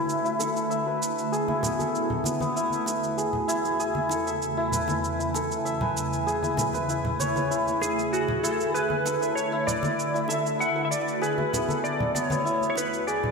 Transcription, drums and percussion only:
0.09 cabasa soft
0.26 cabasa soft
0.40 high bongo soft
0.40 cabasa medium
0.57 cabasa soft
0.71 cabasa soft
1.02 cabasa medium
1.18 cabasa soft
1.33 cabasa soft
1.48 high conga medium
1.63 high bongo soft
1.63 low conga medium
1.63 cabasa medium
1.79 high conga medium
1.79 cabasa soft
1.95 cabasa soft
2.10 low conga medium
2.24 high conga medium
2.24 cabasa medium
2.40 high conga medium
2.40 cabasa soft
2.57 cabasa soft
2.70 high conga soft
2.70 cabasa soft
2.86 high bongo soft
2.86 cabasa medium
3.04 cabasa soft
3.18 cabasa soft
3.33 low conga medium
3.49 cabasa medium
3.65 cabasa soft
3.80 cabasa soft
3.95 high conga medium
4.09 high bongo soft
4.09 cabasa medium
4.27 cabasa soft
4.42 cabasa soft
4.72 low conga medium
4.72 cabasa medium
4.88 high bongo soft
4.88 high conga medium
4.88 cabasa soft
5.04 cabasa soft
5.20 cabasa soft
5.34 high bongo soft
5.34 cabasa medium
5.52 cabasa soft
5.66 cabasa soft
5.81 low conga medium
5.97 cabasa medium
6.13 cabasa soft
6.28 cabasa soft
6.43 high conga medium
6.43 cabasa soft
6.57 high bongo soft
6.57 low conga medium
6.57 cabasa medium
6.73 high conga soft
6.73 cabasa soft
6.89 cabasa soft
7.05 low conga medium
7.19 high bongo soft
7.19 high conga medium
7.19 cabasa medium
7.36 high conga medium
7.36 cabasa soft
7.52 cabasa soft
7.67 high conga soft
7.67 cabasa soft
7.81 high bongo soft
7.81 cabasa medium
7.99 cabasa soft
8.14 cabasa soft
8.28 low conga medium
8.44 cabasa medium
8.60 cabasa soft
8.75 cabasa soft
8.90 high conga soft
9.06 high bongo medium
9.06 cabasa medium
9.22 cabasa soft
9.37 cabasa soft
9.68 low conga medium
9.68 cabasa medium
9.83 high bongo soft
9.83 high conga medium
9.83 cabasa soft
9.99 cabasa soft
10.16 cabasa soft
10.28 high bongo soft
10.28 cabasa medium
10.46 cabasa soft
10.61 cabasa soft
10.92 cabasa medium
11.08 cabasa soft
11.23 cabasa soft
11.38 high conga soft
11.53 high bongo medium
11.53 low conga medium
11.53 cabasa medium
11.69 high conga medium
11.69 cabasa soft
11.85 cabasa soft
12.00 low conga medium
12.15 high conga soft
12.15 cabasa medium
12.30 high conga medium
12.30 cabasa soft
12.47 cabasa soft
12.61 high conga soft
12.61 cabasa soft
12.76 high bongo soft
12.76 cabasa medium
12.94 cabasa soft
13.08 cabasa soft
13.24 low conga medium

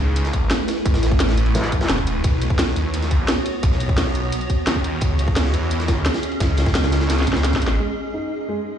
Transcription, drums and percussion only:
0.16 closed hi-hat loud
0.16 ride medium
0.25 snare medium
0.25 closed hi-hat soft
0.33 kick medium
0.33 closed hi-hat medium
0.33 ride medium
0.50 snare loud
0.50 closed hi-hat loud
0.50 ride medium
0.68 snare loud
0.68 closed hi-hat medium
0.68 ride medium
0.76 snare soft
0.86 kick loud
0.86 closed hi-hat medium
0.86 ride medium
0.94 snare loud
0.94 ride medium
1.03 snare loud
1.03 closed hi-hat medium
1.03 ride medium
1.12 kick loud
1.20 snare loud
1.20 closed hi-hat loud
1.20 ride medium
1.28 snare loud
1.28 ride medium
1.37 closed hi-hat medium
1.46 ride medium
1.55 snare loud
1.55 closed hi-hat medium
1.55 ride medium
1.64 snare soft
1.64 closed hi-hat soft
1.72 kick medium
1.72 closed hi-hat medium
1.72 ride medium
1.81 snare loud
1.81 ride medium
1.89 snare soft
1.89 snare loud
1.89 closed hi-hat medium
1.98 kick medium
1.98 ride medium
2.07 closed hi-hat medium
2.07 ride medium
2.24 kick loud
2.24 closed hi-hat medium
2.24 ride medium
2.42 closed hi-hat medium
2.42 ride medium
2.50 kick loud
2.59 snare loud
2.59 closed hi-hat medium
2.59 ride loud
2.68 snare soft
2.76 closed hi-hat medium
2.76 ride medium
2.94 closed hi-hat medium
2.94 ride medium
3.02 snare medium
3.02 closed hi-hat soft
3.11 kick medium
3.11 closed hi-hat medium
3.11 ride medium
3.28 snare loud
3.28 closed hi-hat medium
3.28 ride medium
3.46 closed hi-hat medium
3.46 ride medium
3.63 kick loud
3.63 closed hi-hat medium
3.63 ride medium
3.72 snare soft
3.80 closed hi-hat medium
3.80 ride medium
3.89 kick loud
3.98 snare loud
3.98 closed hi-hat medium
3.98 ride medium
4.07 snare soft
4.15 closed hi-hat medium
4.15 ride medium
4.32 closed hi-hat medium
4.32 ride medium
4.41 closed hi-hat soft
4.50 kick medium
4.50 closed hi-hat medium
4.50 ride medium
4.67 snare loud
4.67 closed hi-hat medium
4.67 ride medium
4.76 kick medium
4.84 closed hi-hat medium
4.84 ride medium
5.01 kick loud
5.01 closed hi-hat medium
5.01 ride loud
5.19 closed hi-hat medium
5.19 ride medium
5.28 kick loud
5.36 snare loud
5.36 closed hi-hat loud
5.36 ride loud
5.45 snare medium
5.54 closed hi-hat medium
5.54 ride medium
5.71 closed hi-hat loud
5.71 ride medium
5.80 snare medium
5.80 closed hi-hat soft
5.88 kick medium
5.88 snare loud
5.88 closed hi-hat medium
5.88 ride medium
6.05 snare loud
6.05 closed hi-hat medium
6.05 ride medium
6.14 snare loud
6.14 ride medium
6.23 closed hi-hat medium
6.31 ride medium
6.40 kick loud
6.40 snare loud
6.40 closed hi-hat loud
6.40 ride medium
6.57 snare loud
6.57 closed hi-hat medium
6.57 ride medium
6.66 kick loud
6.66 snare medium
6.66 ride medium
6.75 snare loud
6.75 closed hi-hat loud
6.75 ride medium
6.84 snare loud
6.84 ride medium
6.92 snare loud
6.92 closed hi-hat medium
6.92 ride medium
7.01 snare loud
7.01 ride medium
7.10 snare medium
7.10 snare loud
7.10 closed hi-hat loud
7.10 ride medium
7.18 snare soft
7.18 closed hi-hat soft
7.21 snare medium
7.27 kick medium
7.27 closed hi-hat medium
7.27 ride medium
7.33 snare medium
7.36 snare loud
7.36 ride medium
7.44 snare medium
7.44 snare soft
7.44 closed hi-hat loud
7.53 kick medium
7.53 snare loud
7.53 closed hi-hat soft
7.53 ride medium
7.62 closed hi-hat medium
7.62 ride medium
7.68 snare loud

